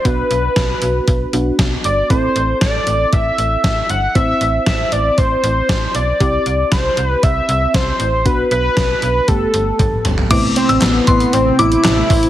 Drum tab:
CC |----------------|----------------|----------------|----------------|
HH |x-x-x-x-x-x-x-x-|x-x-x-x-x-x-x-x-|x-x-x-x-x-x-x-x-|x-x-x-x-x-x-x-x-|
CP |----------------|----------------|----------------|----------------|
SD |----o-------o---|----o-------o---|----o-------o---|----o-------o---|
T1 |----------------|----------------|----------------|----------------|
T2 |----------------|----------------|----------------|----------------|
FT |----------------|----------------|----------------|----------------|
BD |o---o---o---o---|o---o---o---o---|o---o---o---o---|o---o---o---o---|

CC |----------------|x---------------|
HH |x-x-x-x-x-x-x-x-|x-xxx-xxx-xxx-ox|
CP |----------------|----x-------x---|
SD |----o-----------|----o-------o---|
T1 |------------o---|----------------|
T2 |--------------o-|----------------|
FT |---------------o|----------------|
BD |o---o---o---o---|o-----o-------o-|